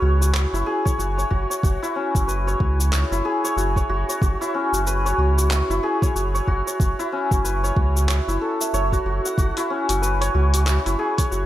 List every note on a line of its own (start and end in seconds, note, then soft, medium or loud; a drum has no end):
0.00 0.46 C#2 medium
0.00 1.95 C#4 medium
0.00 0.53 E4 loud
0.00 0.21 F#4 medium
0.00 0.66 G#4 medium
0.00 2.27 B4 medium
0.00 0.34 C#5 medium
0.21 0.98 F#4 medium
0.21 cabasa medium
0.34 0.85 C#5 medium
0.34 clap medium
0.34 cabasa soft
0.53 0.63 F#1 medium
0.53 1.82 E4 medium
0.53 cabasa soft
0.66 3.25 G#4 medium
0.85 1.17 C#5 loud
0.85 kick loud
0.85 cabasa medium
0.98 1.25 F#1 medium
0.98 1.30 F#4 medium
0.98 cabasa soft
1.18 1.50 C#5 medium
1.18 cabasa soft
1.30 1.46 F#1 loud
1.30 1.63 F#4 medium
1.30 kick medium
1.50 2.47 C#5 medium
1.50 cabasa medium
1.63 1.78 F#1 medium
1.63 2.14 F#4 medium
1.63 kick loud
1.63 cabasa medium
1.82 3.11 E4 loud
1.82 cabasa soft
1.96 4.54 C#4 medium
2.15 2.55 F#1 medium
2.15 2.60 F#4 medium
2.15 kick loud
2.15 cabasa medium
2.28 4.86 B4 medium
2.28 cabasa medium
2.47 2.92 C#5 medium
2.47 cabasa soft
2.60 3.04 C#2 medium
2.60 2.79 F#4 medium
2.60 kick loud
2.79 3.57 F#4 medium
2.79 cabasa medium
2.92 3.44 C#5 medium
2.92 clap medium
2.92 cabasa soft
3.11 3.21 F#1 medium
3.11 4.41 E4 medium
3.11 cabasa soft
3.25 5.83 G#4 medium
3.44 3.76 C#5 medium
3.44 cabasa medium
3.57 3.83 F#1 medium
3.57 3.89 F#4 medium
3.57 cabasa soft
3.76 4.09 C#5 medium
3.76 kick medium
3.76 cabasa soft
3.89 4.04 F#1 loud
3.89 4.22 F#4 medium
4.09 5.05 C#5 medium
4.09 cabasa medium
4.22 4.36 F#1 medium
4.22 4.73 F#4 medium
4.22 kick loud
4.22 cabasa medium
4.41 5.70 E4 loud
4.41 cabasa soft
4.54 7.12 C#4 medium
4.73 5.13 F#1 medium
4.73 5.18 F#4 medium
4.73 cabasa medium
4.87 7.44 B4 medium
4.87 cabasa medium
5.06 5.50 C#5 medium
5.06 cabasa soft
5.18 5.62 C#2 medium
5.18 5.37 F#4 medium
5.38 6.15 F#4 medium
5.38 cabasa medium
5.51 6.02 C#5 medium
5.51 clap medium
5.51 cabasa medium
5.70 5.80 F#1 medium
5.70 6.99 E4 medium
5.70 cabasa soft
5.83 8.47 G#4 medium
6.02 6.34 C#5 loud
6.02 kick loud
6.02 cabasa medium
6.15 6.41 F#1 medium
6.15 6.47 F#4 medium
6.15 cabasa medium
6.34 6.67 C#5 medium
6.34 cabasa soft
6.47 6.62 F#1 loud
6.47 6.79 F#4 medium
6.47 kick medium
6.67 7.63 C#5 medium
6.67 cabasa medium
6.80 6.94 F#1 medium
6.80 7.31 F#4 medium
6.80 kick loud
6.80 cabasa medium
6.99 8.28 E4 loud
6.99 cabasa soft
7.12 9.70 C#4 medium
7.31 7.71 F#1 medium
7.31 7.76 F#4 medium
7.31 kick loud
7.31 cabasa medium
7.44 10.02 B4 medium
7.44 cabasa medium
7.63 8.08 C#5 medium
7.63 cabasa soft
7.76 8.20 C#2 medium
7.76 7.95 F#4 medium
7.76 kick loud
7.96 8.92 F#4 medium
7.96 cabasa medium
8.09 8.73 C#5 medium
8.09 clap medium
8.09 cabasa medium
8.28 8.38 F#1 medium
8.28 9.57 E4 medium
8.28 cabasa soft
8.41 11.05 A4 medium
8.61 10.90 E5 medium
8.61 cabasa medium
8.73 8.99 F#1 medium
8.73 10.21 C#5 medium
8.73 cabasa medium
8.92 9.05 F#4 medium
8.92 kick medium
8.92 cabasa soft
9.05 9.20 F#1 loud
9.05 9.38 F#4 medium
9.25 11.40 F#5 medium
9.25 cabasa medium
9.38 9.52 F#1 medium
9.38 9.89 F#4 medium
9.38 kick loud
9.38 cabasa soft
9.57 10.86 E4 loud
9.57 open hi-hat soft
9.57 cabasa soft
9.70 11.46 C#4 medium
9.89 10.29 F#1 medium
9.89 10.34 F#4 medium
9.89 open hi-hat soft
9.89 cabasa medium
10.02 11.46 B4 medium
10.02 cabasa medium
10.21 10.66 C#5 medium
10.21 open hi-hat soft
10.21 cabasa soft
10.34 10.79 C#2 medium
10.34 10.53 F#4 medium
10.54 11.31 F#4 medium
10.54 open hi-hat medium
10.54 cabasa medium
10.66 11.17 C#5 medium
10.66 clap medium
10.66 cabasa soft
10.86 10.96 F#1 medium
10.86 11.46 E4 medium
10.86 open hi-hat soft
10.86 cabasa soft
10.99 11.46 G#4 medium
11.18 11.46 C#5 loud
11.18 kick loud
11.18 open hi-hat soft
11.18 cabasa medium
11.31 11.46 F#1 medium
11.31 11.46 F#4 medium
11.31 cabasa medium